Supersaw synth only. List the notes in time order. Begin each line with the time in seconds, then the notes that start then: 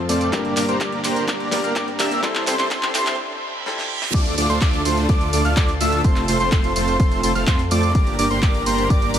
0.09 A3 C4 F4 A4 D5
0.33 A#3 D4 G4 A#4 D5
0.57 A#3 D4 G4 A#4 D5
0.69 A#3 D4 G4 A#4 C5
0.81 A#3 D4 G4 A#4 D5
1.04 A#3 D4 G4 A#4 C5
1.28 A#3 D4 G4 A#4 D5
1.52 A#3 D4 G4 A#4 D5
1.64 A#3 D4 G4 A#4 F5
1.76 A#3 D4 G4 A#4 D5
2.00 A#3 D4 G4 A#4 E5
2.23 C4 E4 G4 A4 C5
2.47 C4 E4 G4 A4 C5
2.59 C4 E4 G4 A4 C5
2.71 C4 E4 G4 A4 C5
2.95 C4 E4 G4 A4 C5
4.14 A3 D4 F4 A4 D5
4.38 A3 D4 F4 A4 D5
4.50 A3 D4 F4 A4 C5
4.62 A3 D4 F4 A4 D5
4.85 A3 D4 F4 A4 C5
5.09 A3 D4 F4 A4 D5
5.33 A3 D4 F4 A4 D5
5.45 A3 D4 F4 A4 F5
5.57 A3 D4 F4 A4 D5
5.81 A3 D4 F4 A4 E5
6.05 A3 C4 F4 A4 C5
6.28 A3 C4 F4 A4 C5
6.40 A3 C4 F4 A4 C5
6.52 A3 C4 F4 A4 C5
6.76 A3 C4 F4 A4 C5
7.00 A3 C4 F4 A4 C5
7.24 A3 C4 F4 A4 C5
7.36 A3 C4 F4 A4 F5
7.48 A3 C4 F4 A4 C5
7.71 A3 C4 F4 A4 D5
7.95 A#3 D4 G4 A#4 D5
8.19 A#3 D4 G4 A#4 D5
8.31 A#3 D4 G4 A#4 C5
8.43 A#3 D4 G4 A#4 D5
8.66 A#3 D4 G4 A#4 C5
8.90 A#3 D4 G4 A#4 D5
9.14 A#3 D4 G4 A#4 D5